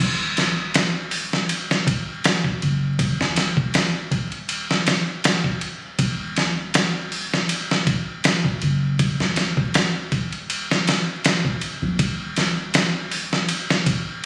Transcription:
0.00 D#1
0.37 snare, ride
0.74 snare, ride
1.11 open hi-hat
1.33 snare
1.49 ride
1.71 snare
1.87 kick, ride
2.24 snare, ride
2.44 kick
2.62 F#1, ride
2.99 kick, ride
3.20 D#1, snare
3.36 snare, ride
3.57 kick
3.74 snare, ride
4.11 kick, ride
4.32 ride
4.49 ride
4.71 snare
4.87 snare, ride
5.24 snare, ride
5.44 kick
5.61 ride
5.99 D#1, kick, ride
6.36 snare, ride
6.74 snare, ride
7.12 open hi-hat
7.34 snare
7.49 ride
7.71 snare
7.87 kick, ride
8.24 snare, ride
8.45 kick
8.62 F#1, ride
8.99 kick, ride
9.20 D#1, snare
9.36 snare, ride
9.57 kick
9.74 snare, ride
10.12 kick, ride
10.33 ride
10.50 ride
10.71 snare
10.88 snare, ride
11.24 snare, ride
11.45 kick
11.61 F#1, ride
11.82 A#1
11.99 D#1, kick, ride
12.36 snare, ride
12.74 snare, ride
13.11 open hi-hat
13.33 snare
13.49 ride
13.70 snare
13.86 kick, ride

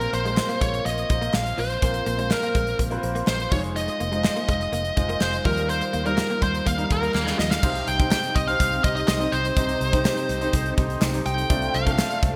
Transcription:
Already playing: A#2 A#3 C4 F4 A#4 C5
0.01 muted clean electric guitar stroke, closed hi-hat
0.13 A#1 A#3 C5, closed hi-hat
0.25 G#3 A#3 C4 F4 C5, closed hi-hat
0.37 muted clean electric guitar stroke, snare, clap
0.49 A#3, closed hi-hat
0.61 A#1 G#3 C#5, kick, closed hi-hat
0.74 closed hi-hat
0.85 A#1 A#3 D#5, closed hi-hat
0.98 closed hi-hat
1.09 A#1 A#3 C4 F4 C5, muted clean electric guitar stroke, kick, closed hi-hat
1.22 A#3, closed hi-hat
1.34 A#1 F5, snare, clap
1.46 closed hi-hat
1.58 A#1 F3 C5, open hi-hat
1.70 closed hi-hat
1.82 A#1 A#2 A#3 C4 F4 C5, kick, closed hi-hat
1.94 muted clean electric guitar stroke, closed hi-hat
2.06 A#1 A#3, closed hi-hat
2.18 G#3 A#3 C4 F4 C5, closed hi-hat
2.31 A#4, muted clean electric guitar stroke, snare, clap
2.42 A#3, closed hi-hat
2.55 A#1 G#3, kick, closed hi-hat
2.67 closed hi-hat
2.79 A#1 A#3, kick, closed hi-hat
2.91 A#3 C4 F4 B4, closed hi-hat
2.98 C5
3.03 A#1, muted clean electric guitar stroke, closed hi-hat
3.15 A#3, closed hi-hat
3.27 A#1 C5, snare, clap
3.40 closed hi-hat
3.51 F1 F3 G#3 D#4 F4 C5 C#5, kick, open hi-hat
3.64 closed hi-hat
3.76 D#5, closed hi-hat
3.88 muted clean electric guitar stroke, closed hi-hat
4.00 F1 A#3, closed hi-hat
4.11 G#3 D#4 F4 C5, closed hi-hat
4.24 muted clean electric guitar stroke, snare, clap
4.36 A#3, closed hi-hat
4.49 F1 G#3 D#5, kick, closed hi-hat
4.61 closed hi-hat
4.72 F1 A#3, closed hi-hat
4.85 closed hi-hat
4.96 F1 G#3 D#4 F4 C5, muted clean electric guitar stroke, kick, closed hi-hat
5.09 A#3, closed hi-hat
5.21 F1 C5, snare, clap
5.33 closed hi-hat
5.45 D#2 D#3 F3 G3 D#4 F4 A#4, kick, open hi-hat
5.57 closed hi-hat
5.69 C5, closed hi-hat
5.81 muted clean electric guitar stroke, closed hi-hat
5.93 D#2 A#3, closed hi-hat
6.05 G3 D#4 F4 A#4, closed hi-hat
6.18 muted clean electric guitar stroke, snare, clap
6.30 A#3, closed hi-hat
6.42 D#2 G3 C5, kick, closed hi-hat
6.55 closed hi-hat
6.66 D#2 A#3 F5, kick, closed hi-hat
6.78 G3 D#4 F4 A#4, closed hi-hat
6.90 D#2 A#4, muted clean electric guitar stroke, kick, closed hi-hat
7.02 A#3, closed hi-hat
7.14 D#2 F5, snare, clap
7.27 snare
7.38 D#2 F3 D#5, snare
7.51 F5, snare
7.62 C2 C3 C4 D#4 G4 C5, kick, crash
7.75 closed hi-hat
7.87 C2 G5, closed hi-hat
7.99 D#4 G4 C5, kick, closed hi-hat
8.11 G5, snare, clap, tambourine
8.23 closed hi-hat
8.36 C2 D#5, kick, closed hi-hat
8.47 D#4 G4 C5 F5, closed hi-hat
8.60 C2, kick, closed hi-hat
8.72 closed hi-hat
8.84 C2 D#4 G4 C5 D#5, kick, closed hi-hat
8.96 D#5, closed hi-hat
9.08 C2 D#5, snare, clap, tambourine
9.19 D#4 G4 C5, closed hi-hat
9.32 C2 C5, closed hi-hat
9.45 closed hi-hat
9.56 C2 C3 D#4 G4 A4 C5, kick, closed hi-hat
9.69 closed hi-hat
9.81 C2, closed hi-hat
9.92 D#4 G4 C5, kick, closed hi-hat
10.05 snare, clap, tambourine
10.17 closed hi-hat
10.29 C2, closed hi-hat
10.41 D#4 G4 C5, closed hi-hat
10.53 C2, kick, closed hi-hat
10.66 closed hi-hat
10.78 C2 D#4 G4 C5, kick, closed hi-hat
10.90 closed hi-hat
11.01 C2, snare, clap, tambourine
11.14 D#4 G4 C5, closed hi-hat
11.26 C2 G5, closed hi-hat
11.38 closed hi-hat
11.50 C2 C3 A3 C4 D4 F4 C5, kick, closed hi-hat
11.62 closed hi-hat
11.74 C2 F5, closed hi-hat
11.86 A3 C4 D4 F4 A4, kick, closed hi-hat
11.99 snare, clap, tambourine
12.11 closed hi-hat
12.23 C2, kick, closed hi-hat

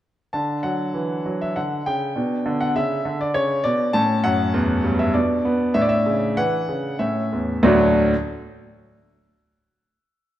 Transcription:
0.33 D3 D4 A5
0.63 F#3 F#5
0.94 E3
1.26 F#3
1.41 E5
1.56 D3 F#5
1.86 C#3 G5
2.16 B2 D4
2.46 D3
2.61 F#5
2.76 C#3 E5
3.05 D3
3.21 D5
3.34 C#3 C#5
3.64 B2 D5
3.93 A2 C#4 A5
4.24 F#2 F#5
4.54 E2
4.84 G2
4.99 E5
5.14 B2 D4 D5
5.45 B3
5.74 A2 D4 E5
5.81 D5
5.89 E5
6.06 C#3
6.37 E3 F#5
6.69 C#3
6.99 A2 C#4 E5
7.33 E2
7.63 D2 A2 F#3 A3 D4 F#4 D5

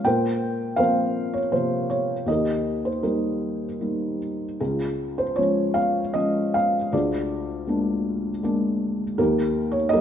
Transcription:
0.04 A#2 A#4 C5 G5
0.76 F3 A#3 C4 A#4 C5 F5
1.33 C#5
1.52 C3 F3 A#3 C5
1.90 C#5
2.26 D#2 G4 D#5
2.31 A#4
2.85 C5
3.03 G3 A#3 D#4 G4 A#4
3.81 G3 A#3 D#4
4.61 C#2 C#4 F4 G#4
5.18 C5
5.36 F3 G#3 C#4 C#5
5.74 F5
6.14 F3 G#3 C#4 D#5
6.54 F5
6.93 D2 F4 G#4 D5
7.67 G#3 A#3 D4
8.43 G#3 A#3 D4
9.18 D#2 D#4 G4 A#4
9.72 C#5
9.89 G4 D#5
9.93 G3 A#3 D#4 A#4

